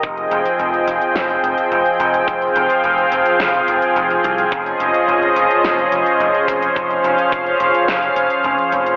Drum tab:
HH |xxxxxxxxxxxxxxxx|xxxxxxxxxxxxxxxx|xxxxxxxxxxxxxxxx|xxxxxxxxxxxxxxxx|
SD |--------o-------|--------o-------|--------o-------|--------o-------|
BD |o---------------|o---------------|o-------------o-|o---o-----------|